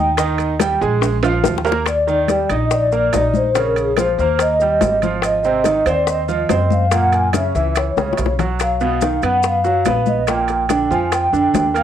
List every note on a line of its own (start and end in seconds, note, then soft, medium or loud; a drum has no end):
0.00 0.76 D#2 loud
0.00 0.11 D#4 medium
0.00 0.11 D#5 medium
0.00 0.10 G5 loud
0.00 0.12 D#6 medium
0.17 0.52 D#3 medium
0.17 0.53 D#4 medium
0.17 0.53 D#5 medium
0.17 high bongo medium
0.17 high conga soft
0.17 high timbale medium
0.17 maracas medium
0.38 high bongo soft
0.38 high conga soft
0.38 high timbale medium
0.38 maracas soft
0.59 0.78 G3 medium
0.59 0.78 G4 medium
0.59 0.78 G5 medium
0.59 high bongo medium
0.59 high conga loud
0.59 high timbale medium
0.59 low timbale medium
0.59 maracas medium
0.81 1.41 A#1 loud
0.81 1.16 G#3 medium
0.81 1.16 G#4 medium
0.81 1.16 G#5 medium
0.81 high bongo soft
0.81 high conga soft
0.81 maracas soft
1.01 high bongo medium
1.01 high conga soft
1.01 high timbale medium
1.01 maracas medium
1.23 1.58 F3 medium
1.23 1.58 F4 medium
1.23 1.58 F5 medium
1.23 high bongo soft
1.23 high conga soft
1.23 high timbale loud
1.23 maracas soft
1.44 2.44 D#2 medium
1.44 high bongo loud
1.44 high conga medium
1.44 low timbale medium
1.44 maracas medium
1.58 high bongo medium
1.65 1.83 A#3 medium
1.65 1.83 A#4 medium
1.65 1.83 A#5 medium
1.65 low timbale medium
1.65 maracas soft
1.72 low bongo medium
1.86 2.47 D5 medium
1.86 high bongo medium
1.86 high conga soft
1.86 high timbale medium
1.86 maracas medium
2.07 2.25 D#3 medium
2.07 2.25 D#4 medium
2.07 high bongo soft
2.07 high conga soft
2.07 maracas soft
2.28 2.46 G3 medium
2.28 2.47 G4 medium
2.28 high bongo medium
2.28 high conga medium
2.28 high timbale medium
2.28 low timbale medium
2.28 maracas medium
2.49 3.09 A#1 medium
2.49 2.85 D#4 medium
2.49 2.86 D#5 medium
2.49 high bongo soft
2.49 high conga soft
2.49 high timbale medium
2.49 maracas soft
2.71 3.31 D5 medium
2.71 high bongo medium
2.71 high conga soft
2.71 maracas medium
2.92 3.10 A#3 medium
2.92 3.10 A#4 medium
2.92 high bongo soft
2.92 high conga soft
2.92 maracas soft
3.13 4.12 A#1 medium
3.13 3.48 D#4 medium
3.13 3.48 D#5 medium
3.13 high bongo soft
3.13 low bongo medium
3.13 high conga medium
3.13 high timbale medium
3.13 low timbale medium
3.13 maracas medium
3.34 3.57 C5 medium
3.34 high conga medium
3.34 maracas soft
3.55 3.90 C#3 medium
3.55 3.90 C#4 medium
3.55 high bongo medium
3.55 high timbale medium
3.55 maracas medium
3.76 3.88 G#4 medium
3.76 high bongo soft
3.76 high conga soft
3.76 high timbale medium
3.76 maracas soft
3.97 4.15 F3 medium
3.97 4.16 F4 medium
3.97 4.38 C5 medium
3.97 high bongo medium
3.97 high conga medium
3.97 high timbale medium
3.97 low timbale medium
3.97 maracas medium
4.18 4.78 D#2 medium
4.18 4.54 A#3 medium
4.18 4.54 A#4 medium
4.18 high bongo soft
4.18 high conga soft
4.18 maracas soft
4.39 5.00 D#5 loud
4.39 high bongo medium
4.39 high conga soft
4.39 high timbale medium
4.39 maracas medium
4.60 4.96 G3 medium
4.60 4.96 G4 medium
4.60 high bongo soft
4.60 high conga soft
4.60 maracas soft
4.81 5.81 G#1 medium
4.81 high bongo soft
4.81 low bongo medium
4.81 high conga medium
4.81 high timbale medium
4.81 low timbale medium
4.81 maracas medium
5.02 5.37 F3 medium
5.02 5.37 F4 medium
5.02 high conga medium
5.02 high timbale medium
5.02 maracas soft
5.22 5.83 D#5 medium
5.22 high bongo medium
5.22 high conga soft
5.22 high timbale medium
5.22 maracas medium
5.43 5.62 C3 medium
5.43 5.62 C4 medium
5.43 high bongo soft
5.43 high conga soft
5.43 maracas soft
5.64 5.83 D#3 medium
5.64 5.83 D#4 medium
5.64 high bongo medium
5.64 high conga medium
5.64 high timbale medium
5.64 low timbale medium
5.64 maracas medium
5.86 6.45 D#2 medium
5.86 6.21 C4 medium
5.86 6.21 C5 medium
5.86 6.07 D5 medium
5.86 high bongo soft
5.86 high conga soft
5.86 high timbale medium
5.86 maracas soft
6.07 6.68 D#5 loud
6.07 high bongo medium
6.07 high conga soft
6.07 maracas medium
6.28 6.46 F3 medium
6.28 6.46 F4 medium
6.28 high bongo soft
6.28 high conga soft
6.28 maracas soft
6.49 7.49 F#2 medium
6.49 6.84 C4 medium
6.49 6.84 C5 medium
6.49 high bongo soft
6.49 low bongo medium
6.49 high conga medium
6.49 high timbale medium
6.49 low timbale medium
6.49 maracas medium
6.71 6.91 F5 medium
6.71 high conga medium
6.71 maracas soft
6.91 7.26 A#2 medium
6.91 7.26 A#3 medium
6.91 7.14 F#5 loud
6.91 high bongo medium
6.91 high conga soft
6.91 high timbale medium
6.91 maracas medium
7.12 7.35 G#5 loud
7.12 high bongo soft
7.12 high conga soft
7.12 high timbale medium
7.12 maracas soft
7.33 7.51 C#3 medium
7.33 7.51 C#4 medium
7.33 7.74 E5 loud
7.33 high bongo medium
7.33 high conga medium
7.33 high timbale medium
7.33 low timbale medium
7.33 maracas medium
7.55 7.94 C#2 medium
7.55 7.90 E3 medium
7.55 7.90 E4 medium
7.55 high bongo soft
7.55 high conga soft
7.55 maracas soft
7.76 8.36 C#5 loud
7.76 high bongo medium
7.76 high conga soft
7.76 high timbale medium
7.76 maracas medium
7.97 8.16 C2 medium
7.97 8.32 C#3 medium
7.97 8.32 C#4 medium
7.97 high bongo medium
7.97 high conga medium
7.97 maracas soft
8.13 low bongo medium
8.17 9.17 B1 medium
8.17 high timbale medium
8.17 low timbale medium
8.17 maracas medium
8.26 low bongo medium
8.39 8.74 F#3 medium
8.39 8.74 F#4 medium
8.39 low bongo medium
8.39 low conga medium
8.39 high timbale medium
8.39 maracas soft
8.59 9.20 F5 loud
8.59 high bongo medium
8.59 high conga soft
8.59 high timbale medium
8.59 maracas medium
8.80 8.98 B2 medium
8.80 8.98 B3 medium
8.80 high bongo soft
8.80 high conga soft
8.80 maracas soft
9.01 9.19 D#3 medium
9.01 9.20 D#4 medium
9.01 high bongo medium
9.01 high conga medium
9.01 high timbale medium
9.01 low timbale medium
9.01 maracas medium
9.22 9.82 F#2 medium
9.22 9.58 B3 medium
9.22 9.58 B4 medium
9.22 9.34 F#5 medium
9.22 high bongo soft
9.22 high conga soft
9.22 high timbale medium
9.22 maracas soft
9.43 10.04 F5 loud
9.43 high bongo medium
9.43 high conga soft
9.43 maracas medium
9.64 9.82 F#3 medium
9.64 9.82 F#4 medium
9.64 high bongo soft
9.64 high conga soft
9.64 maracas soft
9.85 10.85 A#1 medium
9.85 10.21 B3 medium
9.85 10.21 B4 medium
9.85 high bongo soft
9.85 low bongo medium
9.85 high conga medium
9.85 high timbale medium
9.85 low timbale medium
9.85 maracas medium
10.06 10.18 D#5 medium
10.06 high conga medium
10.06 maracas soft
10.27 10.62 A#2 medium
10.27 10.62 A#3 medium
10.27 10.94 G5 medium
10.27 high bongo medium
10.27 high conga soft
10.27 high timbale medium
10.27 maracas medium
10.48 high bongo soft
10.48 high conga soft
10.48 high timbale medium
10.48 maracas soft
10.69 10.87 D3 medium
10.69 10.88 D4 medium
10.69 high bongo medium
10.69 high conga loud
10.69 high timbale medium
10.69 low timbale medium
10.69 maracas medium
10.91 11.30 F2 medium
10.91 11.26 F3 medium
10.91 11.26 F4 medium
10.91 11.02 G#5 medium
10.91 high bongo soft
10.91 high conga soft
10.91 maracas soft
11.12 11.78 G5 loud
11.12 high bongo medium
11.12 high conga soft
11.12 high timbale medium
11.12 maracas medium
11.33 11.53 F2 medium
11.33 11.68 D3 medium
11.33 11.68 D4 medium
11.33 high bongo soft
11.33 high conga soft
11.33 maracas soft
11.54 11.83 D#2 medium
11.54 high bongo soft
11.54 low bongo medium
11.54 high conga medium
11.54 high timbale medium
11.54 low timbale medium
11.54 maracas medium
11.74 11.83 A#3 medium
11.74 11.83 A#4 medium
11.74 11.83 F5 medium
11.74 high timbale medium
11.74 maracas soft